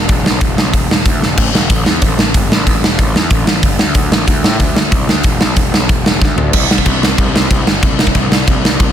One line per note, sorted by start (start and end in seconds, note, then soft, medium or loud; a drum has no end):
0.09 0.24 E1 loud
0.09 kick loud
0.09 open hi-hat medium
0.25 0.40 B1 medium
0.25 snare loud
0.41 0.55 E1 medium
0.41 kick loud
0.41 open hi-hat medium
0.56 0.72 B1 loud
0.56 snare loud
0.74 0.88 E1 medium
0.74 kick loud
0.74 open hi-hat medium
0.89 1.04 E1 medium
0.89 snare loud
1.05 1.20 D2 medium
1.05 kick loud
1.05 open hi-hat medium
1.21 1.38 E1 medium
1.21 snare medium
1.38 1.52 A1 loud
1.38 kick loud
1.38 open hi-hat medium
1.38 crash medium
1.52 1.68 E1 medium
1.52 snare loud
1.70 1.84 A1 medium
1.70 kick loud
1.70 open hi-hat medium
1.85 2.00 E2 medium
1.85 snare loud
2.02 2.16 A1 loud
2.02 kick loud
2.02 open hi-hat medium
2.17 2.32 A1 medium
2.17 snare loud
2.34 2.49 G1 medium
2.34 kick loud
2.34 open hi-hat medium
2.50 2.65 A1 medium
2.50 snare loud
2.66 2.81 A1 loud
2.66 kick loud
2.66 open hi-hat medium
2.82 2.97 E1 medium
2.82 snare loud
2.99 3.13 A1 medium
2.99 kick loud
2.99 open hi-hat medium
3.14 3.29 E2 loud
3.14 snare loud
3.30 3.45 A1 loud
3.30 kick loud
3.30 open hi-hat soft
3.46 3.61 A1 medium
3.46 snare loud
3.63 3.78 G1 medium
3.63 kick loud
3.63 open hi-hat medium
3.79 3.94 D2 medium
3.79 snare loud
3.95 4.10 D2 loud
3.95 kick loud
3.95 open hi-hat medium
4.11 4.27 A1 medium
4.11 snare loud
4.27 4.43 D2 loud
4.27 kick loud
4.27 open hi-hat medium
4.44 4.59 A2 loud
4.44 snare loud
4.59 4.75 D2 loud
4.59 kick loud
4.59 open hi-hat medium
4.76 4.91 D2 medium
4.76 snare loud
4.91 5.07 C2 medium
4.91 kick loud
4.91 open hi-hat medium
5.08 5.23 D2 medium
5.08 snare loud
5.23 5.39 E1 medium
5.23 kick loud
5.23 open hi-hat medium
5.40 5.55 B1 medium
5.40 snare loud
5.56 5.72 E1 loud
5.56 kick loud
5.56 open hi-hat medium
5.73 5.88 B1 medium
5.73 snare loud
5.89 6.04 E1 medium
5.89 kick loud
5.89 open hi-hat medium
6.06 6.21 E1 medium
6.06 snare loud
6.21 6.36 D2 loud
6.21 kick loud
6.21 snare medium
6.38 6.53 D2 medium
6.38 floor tom medium
6.53 6.66 C2 medium
6.53 kick loud
6.53 crash loud
6.53 crash medium
6.69 6.82 C2 medium
6.69 snare loud
6.78 kick medium
6.86 6.98 C2 loud
6.86 kick loud
6.86 crash medium
7.01 7.14 C2 medium
7.01 snare loud
7.18 7.30 C2 medium
7.18 kick loud
7.18 crash medium
7.34 7.47 C2 medium
7.34 snare loud
7.51 7.63 C2 medium
7.51 kick loud
7.51 crash medium
7.66 7.79 G1 medium
7.66 snare loud
7.83 7.95 C2 loud
7.83 kick loud
7.83 crash medium
7.99 8.11 C2 medium
7.99 snare loud
8.07 kick medium
8.15 8.27 C2 loud
8.15 kick medium
8.15 crash medium
8.31 8.43 C2 medium
8.31 snare loud
8.47 8.60 C2 loud
8.47 kick loud
8.47 crash medium
8.64 8.76 C2 medium
8.64 snare loud
8.79 8.92 C2 medium
8.79 kick loud
8.79 crash medium